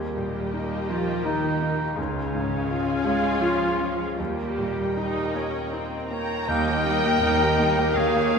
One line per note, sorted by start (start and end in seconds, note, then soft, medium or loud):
0.00 1.94 D#2 medium
0.00 0.87 G3 medium
0.00 1.93 A#3 medium
0.00 0.90 G4 medium
0.00 1.93 G4 soft
0.00 1.93 A#4 medium
0.00 1.93 D#5 medium
0.00 1.94 G5 medium
0.17 0.75 A#2 soft
0.54 1.11 D#4 soft
0.89 1.26 F3 medium
0.89 1.47 A#3 soft
0.89 1.26 F4 medium
1.24 1.97 D#3 medium
1.24 1.96 D#4 medium
1.24 1.83 D#4 medium
1.62 1.98 A#3 soft
1.97 4.15 C#2 medium
1.97 3.06 C#3 medium
1.97 4.15 G#3 medium
1.97 3.07 C#4 medium
1.97 4.15 F4 medium
1.97 4.15 C#5 medium
1.97 4.15 F5 medium
1.97 4.15 G#5 medium
2.34 2.92 G#2 soft
2.71 3.28 F4 medium
3.06 3.42 G#3 medium
3.06 3.65 C#4 medium
3.06 3.43 G#4 medium
3.42 4.17 F3 medium
3.42 3.92 F4 medium
3.42 4.03 F4 medium
3.80 4.19 C#4 soft
4.18 6.45 D#2 medium
4.18 5.73 G3 medium
4.18 4.84 A#3 medium
4.18 5.68 G4 medium
4.18 4.85 G4 medium
4.18 6.07 A#4 medium
4.18 6.07 D#5 medium
4.18 6.07 G5 medium
4.58 5.19 A#2 soft
4.96 5.32 D#4 medium
4.96 5.58 D#4 soft
5.35 5.96 A#3 soft
5.35 5.73 C#4 medium
5.72 6.11 C4 soft
5.72 6.34 D#4 soft
6.10 6.49 A#3 soft
6.10 6.50 C#5 medium
6.10 6.46 G5 medium
6.10 6.46 A#5 medium
6.48 7.14 D#2 medium
6.48 8.39 D#2 medium
6.48 7.14 D#2 medium
6.48 6.66 G3 medium
6.48 8.39 A#3 medium
6.48 6.76 A#3 medium
6.48 6.67 D#4 medium
6.48 7.98 A#4 medium
6.48 8.39 A#4 medium
6.48 7.94 D#5 medium
6.48 7.97 G5 loud
6.48 6.83 G6 medium
6.68 6.86 A#3 medium
6.68 6.97 G4 medium
6.68 6.86 G4 medium
6.86 7.04 G3 medium
6.86 7.16 A#3 medium
6.86 7.04 D#4 medium
7.05 7.23 A#3 medium
7.05 7.34 G4 medium
7.05 7.23 G4 medium
7.22 7.88 D#2 medium
7.22 7.40 G3 medium
7.22 7.52 A#3 medium
7.22 7.40 D#4 medium
7.41 7.60 A#3 medium
7.41 7.71 G4 medium
7.41 7.60 G4 medium
7.60 7.79 G3 medium
7.60 7.89 A#3 medium
7.60 7.79 D#4 medium
7.78 7.97 A#3 medium
7.78 7.97 G4 medium
7.78 8.09 G4 medium
7.96 8.39 D#2 medium
7.96 8.15 G3 medium
7.96 8.27 A#3 medium
7.96 8.14 D#4 medium
7.96 8.39 G#4 medium
7.96 8.39 C#5 medium
7.96 8.39 F5 loud
8.16 8.35 A#3 soft
8.16 8.35 G4 medium
8.16 8.39 G4 medium
8.34 8.39 G3 medium
8.34 8.39 A#3 medium
8.34 8.39 D#4 soft